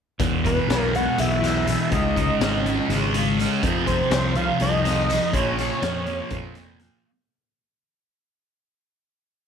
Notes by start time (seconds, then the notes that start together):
0.20 E2 B2 E3, kick, closed hi-hat
0.45 B2 E3 B4, kick, closed hi-hat
0.68 B1 E2 B2 E3, snare, closed hi-hat
0.79 A#4
0.93 E2 B2 E3 F#5, closed hi-hat
1.18 B1 E2 B2 E3 E5, closed hi-hat
1.42 B2 E3, snare, closed hi-hat
1.67 E2 B2 E3, closed hi-hat
1.91 C#2 C#3 G#3 C#4 D#5, kick, closed hi-hat
2.16 G#3 C#4, kick, closed hi-hat
2.40 G#1 C#3 G#3 C#4, snare, closed hi-hat
2.66 C#3 G#3 C#4, closed hi-hat
2.88 G#1 C#3 G#3, snare, closed hi-hat
2.92 C#4
3.14 G#3 C#4, closed hi-hat
3.39 C#3 G#3 C#4, closed hi-hat
3.62 F2 C3 F3, kick, closed hi-hat
3.87 C3 F3 C5, kick, closed hi-hat
4.11 C2 F2 C3 F3, snare, closed hi-hat
4.35 F2 C3 F3 F5, closed hi-hat
4.60 C2 F2 C3 F3 D#5, closed hi-hat
4.85 C3 F3, closed hi-hat
5.09 F2 C3 F3, closed hi-hat
5.33 A#1 A#2 F3 A#3 C#5, kick, closed hi-hat
5.59 F3 A#3, snare, closed hi-hat
5.81 F2 A#2 F3 A#3, snare, closed hi-hat
6.06 A#2 F3 A#3, closed hi-hat
6.30 F2 A#2 F3 A#3, kick, closed hi-hat
6.55 F3 A#3, closed hi-hat
6.80 A#2 F3 A#3, closed hi-hat